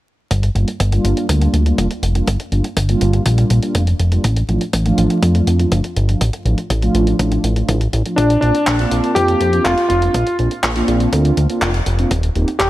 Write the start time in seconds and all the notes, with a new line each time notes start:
0.31 G1, kick, closed hi-hat
0.43 closed hi-hat
0.55 G1 G3 A#3 D4 F4, closed hi-hat
0.68 closed hi-hat
0.80 G1, kick, closed hi-hat
0.92 G3 A#3 D4 F4, closed hi-hat
1.04 G1, closed hi-hat
1.17 closed hi-hat
1.29 D2 G3 A#3 D4 F4, kick, closed hi-hat
1.42 closed hi-hat
1.54 D2, closed hi-hat
1.66 G3 A#3 D4 F4, closed hi-hat
1.78 F1, kick, closed hi-hat
1.91 closed hi-hat
2.03 F1, closed hi-hat
2.15 G3 A#3 D4 F4, closed hi-hat
2.27 G1, kick, closed hi-hat
2.40 closed hi-hat
2.52 G1 G3 A#3 D4 F4, closed hi-hat
2.64 closed hi-hat
2.77 G1, kick, closed hi-hat
2.89 G3 A#3 D4 F4, closed hi-hat
3.01 G1, closed hi-hat
3.13 closed hi-hat
3.26 A#1 G3 A#3 D4 F4, kick, closed hi-hat
3.38 closed hi-hat
3.50 A#1, closed hi-hat
3.63 G3 A#3 D4 F4, closed hi-hat
3.75 F1, kick, closed hi-hat
3.87 closed hi-hat
3.99 F1, closed hi-hat
4.12 G3 A#3 D4 F4, closed hi-hat
4.24 A1, kick, closed hi-hat
4.36 closed hi-hat
4.49 A1 F3 A3 D4 F4, closed hi-hat
4.61 closed hi-hat
4.73 A1, kick, closed hi-hat
4.86 F3 A3 D4 F4, closed hi-hat
4.98 A1, closed hi-hat
5.10 closed hi-hat
5.23 F2 F3 A3 D4 F4, kick, closed hi-hat
5.35 closed hi-hat
5.47 F2, closed hi-hat
5.59 F3 A3 D4 F4, closed hi-hat
5.72 G1, kick, closed hi-hat
5.84 closed hi-hat
5.96 G1, closed hi-hat
6.09 F3 A3 D4 F4, closed hi-hat
6.21 A1, kick, closed hi-hat
6.33 closed hi-hat
6.45 A1 F3 A3 D4 F4, closed hi-hat
6.58 closed hi-hat
6.70 A1, kick, closed hi-hat
6.82 F3 A3 D4 F4, closed hi-hat
6.95 A1, closed hi-hat
7.07 closed hi-hat
7.19 A1 F3 A3 D4 F4, kick, closed hi-hat
7.32 closed hi-hat
7.44 A1, closed hi-hat
7.56 F3 A3 D4 F4, closed hi-hat
7.68 A1, kick, closed hi-hat
7.81 closed hi-hat
7.93 A1, closed hi-hat
8.05 F3 A3 D4 F4, closed hi-hat
8.16 A#1 D4, kick, closed hi-hat
8.30 closed hi-hat
8.41 A#1 A#3 C4 D4 F4, closed hi-hat
8.55 closed hi-hat
8.67 A#1, kick, clap, closed hi-hat
8.79 A#3 C4 D4 F4, closed hi-hat
8.91 A#1, closed hi-hat
9.04 closed hi-hat
9.15 F2 A#3 C4 D4 F4 G4, kick, closed hi-hat
9.28 closed hi-hat
9.41 F2, closed hi-hat
9.53 A#3 C4 D4 F4, closed hi-hat
9.64 F1 F4, kick, clap, closed hi-hat
9.78 closed hi-hat
9.89 F1 F4, closed hi-hat
10.02 A#3 C4 D4 F4, closed hi-hat
10.14 A#1, kick, closed hi-hat
10.27 closed hi-hat
10.39 A#1 A#3 C4 D4 F4, closed hi-hat
10.51 closed hi-hat
10.64 A#1, kick, clap, closed hi-hat
10.76 A#3 C4 D4 F4, closed hi-hat
10.88 A#1, closed hi-hat
11.00 closed hi-hat
11.13 D2 A#3 C4 D4 F4, kick, closed hi-hat
11.25 closed hi-hat
11.37 D2, closed hi-hat
11.50 A#3 C4 D4 F4, closed hi-hat
11.62 F1, kick, clap, closed hi-hat
11.74 closed hi-hat
11.86 F1, closed hi-hat
11.99 A#3 C4 D4 F4, closed hi-hat
12.11 D#1, kick, closed hi-hat
12.23 closed hi-hat
12.36 D#1 A#3 C4 D#4 G4, closed hi-hat
12.48 closed hi-hat
12.59 D#1 G4, kick, clap, closed hi-hat